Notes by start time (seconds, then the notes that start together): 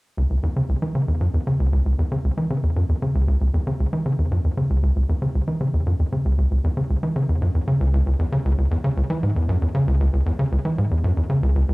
0.18 C#2
0.30 C#2
0.43 E2
0.56 C#3
0.69 C#2
0.82 E3
0.95 C#3
1.08 E2
1.21 F#2
1.34 E2
1.47 C#3
1.60 C#2
1.73 C#2
1.86 C#2
1.99 E2
2.11 C#3
2.24 C#2
2.37 E3
2.50 C#3
2.63 E2
2.76 F#2
2.89 E2
3.02 C#3
3.15 C#2
3.28 C#2
3.41 C#2
3.54 E2
3.67 C#3
3.80 C#2
3.93 E3
4.06 C#3
4.18 E2
4.31 F#2
4.44 E2
4.57 C#3
4.70 C#2
4.83 C#2
4.96 C#2
5.09 E2
5.22 C#3
5.35 C#2
5.48 E3
5.61 C#3
5.74 E2
5.86 F#2
5.99 E2
6.12 C#3
6.25 C#2
6.38 C#2
6.51 C#2
6.64 E2
6.77 C#3
6.90 C#2
7.03 E3
7.16 C#3
7.29 E2
7.42 F#2
7.55 E2
7.68 C#3
7.81 C#2
7.94 C#2
8.06 C#2
8.19 E2
8.32 C#3
8.45 C#2
8.58 C#2
8.71 E2
8.84 C#3
8.97 C#2
9.10 E3
9.23 G#2
9.36 E2
9.49 F#2
9.62 E2
9.75 C#3
9.88 C#2
10.00 C#2
10.13 C#2
10.26 E2
10.39 C#3
10.52 C#2
10.65 E3
10.78 G#2
10.91 E2
11.04 F#2
11.17 E2
11.30 C#3
11.43 C#2
11.56 C#2
11.69 C#2